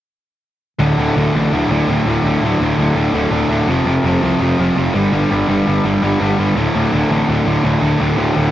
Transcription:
0.79 picked electric bass D1, overdriven electric guitar D2 A2 D3
0.97 picked electric bass D1, overdriven electric guitar D2 A2 D3
1.16 picked electric bass D1, overdriven electric guitar D2 A2 D3
1.33 picked electric bass A1, overdriven electric guitar D2 A2 D3
1.51 picked electric bass D1, overdriven electric guitar D2 A2 D3
1.69 picked electric bass D1, overdriven electric guitar D2 A2 D3
1.87 picked electric bass D1, overdriven electric guitar D2 A2 D3
2.06 picked electric bass D1, overdriven electric guitar D2 A2 D3
2.23 picked electric bass D1, overdriven electric guitar D2 A2 D3
2.41 picked electric bass D1, overdriven electric guitar D2 A2 D3
2.60 picked electric bass D1, overdriven electric guitar D2 A2 D3
2.78 picked electric bass D1, overdriven electric guitar D2 A2 D3
2.95 picked electric bass D1, overdriven electric guitar D2 A2 D3
3.13 picked electric bass D1, overdriven electric guitar D2 A2 D3
3.31 picked electric bass D1, overdriven electric guitar D2 A2 D3
3.49 picked electric bass D1, overdriven electric guitar D2 A2 D3
3.67 picked electric bass F1, overdriven electric guitar F2 C3 F3
3.85 picked electric bass F1, overdriven electric guitar F2 C3 F3
4.04 picked electric bass F1, overdriven electric guitar F2 C3 F3
4.21 picked electric bass C2, overdriven electric guitar F2 C3 F3
4.40 picked electric bass F1, overdriven electric guitar F2 C3 F3
4.59 picked electric bass F1, overdriven electric guitar F2 C3 F3
4.76 picked electric bass F1, overdriven electric guitar F2 C3 F3
4.94 picked electric bass G1, overdriven electric guitar G2 D3 G3
5.12 picked electric bass G1, overdriven electric guitar G2 D3 G3
5.31 picked electric bass G1, overdriven electric guitar G2 D3 G3
5.49 picked electric bass G1, overdriven electric guitar G2 D3 G3
5.67 picked electric bass G1, overdriven electric guitar G2 D3 G3
5.85 picked electric bass G1, overdriven electric guitar G2 D3 G3
6.02 picked electric bass G1, overdriven electric guitar G2 D3 G3
6.20 picked electric bass G1, overdriven electric guitar G2 D3 G3
6.38 picked electric bass G1, overdriven electric guitar G2 D3 G3
6.56 picked electric bass D1, overdriven electric guitar D2 A2 D3
6.74 picked electric bass D1, overdriven electric guitar D2 A2 D3
6.92 picked electric bass D1, overdriven electric guitar D2 A2 D3
7.09 picked electric bass A1, overdriven electric guitar D2 A2 D3
7.28 picked electric bass D1, overdriven electric guitar D2 A2 D3
7.45 picked electric bass D1, overdriven electric guitar D2 A2 D3
7.64 picked electric bass D1, overdriven electric guitar D2 A2 D3
7.81 picked electric bass D1, overdriven electric guitar D2 A2 D3
7.98 picked electric bass D1, overdriven electric guitar D2 A2 D3
8.17 picked electric bass D1, overdriven electric guitar D2 A2 D3
8.33 picked electric bass D1, overdriven electric guitar D2 A2 D3

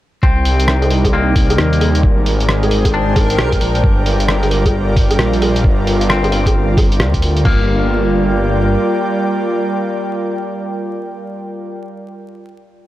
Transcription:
0.22 detuned saw bass C2, analog synth pad C3, clean electric guitar C4, synth texture A#4, kick
0.43 analog synth pad D#4 A#4, open hi-hat
0.49 analog synth pad D5
0.54 analog synth pad G3
0.60 closed hi-hat
0.68 cross-stick
0.82 closed hi-hat, low woodblock
0.91 open hi-hat
1.05 kick, closed hi-hat, low woodblock
1.13 clean electric guitar A#3 C4
1.36 kick, open hi-hat
1.50 closed hi-hat, low woodblock
1.58 detuned saw bass D#2, cross-stick
1.73 closed hi-hat
1.81 open hi-hat, low woodblock
1.95 closed hi-hat
2.03 detuned saw bass G#1, analog synth pad G#3, kick
2.14 analog synth pad G#4
2.26 analog synth pad G5, open hi-hat
2.40 analog synth pad C5, closed hi-hat
2.49 cross-stick
2.63 closed hi-hat, low woodblock
2.71 open hi-hat
2.85 kick, closed hi-hat, low woodblock
2.94 clean electric guitar D4
3.16 kick, open hi-hat, low woodblock
3.30 closed hi-hat
3.38 detuned saw bass C2, cross-stick
3.52 kick, closed hi-hat
3.61 detuned saw bass A#1, open hi-hat
3.75 closed hi-hat
3.84 detuned saw bass G1, analog synth pad G3, kick
4.05 analog synth pad F4, open hi-hat
4.20 closed hi-hat
4.29 cross-stick
4.43 closed hi-hat, low woodblock
4.51 open hi-hat
4.66 kick, closed hi-hat, low woodblock
4.96 kick, open hi-hat
5.11 closed hi-hat, low woodblock
5.19 detuned saw bass A#1, cross-stick
5.33 closed hi-hat
5.42 open hi-hat, low woodblock
5.56 closed hi-hat
5.64 detuned saw bass G1, kick
5.87 open hi-hat
6.01 closed hi-hat
6.10 clean electric guitar C4, cross-stick
6.24 closed hi-hat, low woodblock
6.32 open hi-hat
6.46 kick, closed hi-hat, low woodblock
6.77 kick, open hi-hat, low woodblock
6.92 closed hi-hat
7.00 detuned saw bass D2, cross-stick
7.14 kick, closed hi-hat
7.22 open hi-hat
7.37 closed hi-hat
7.45 detuned saw bass G1, analog synth pad G3, clean electric guitar A#3, kick, floor tom, crash
7.53 analog synth pad F4
7.60 analog synth pad A#4
7.66 analog synth pad D5
7.72 analog synth pad G5

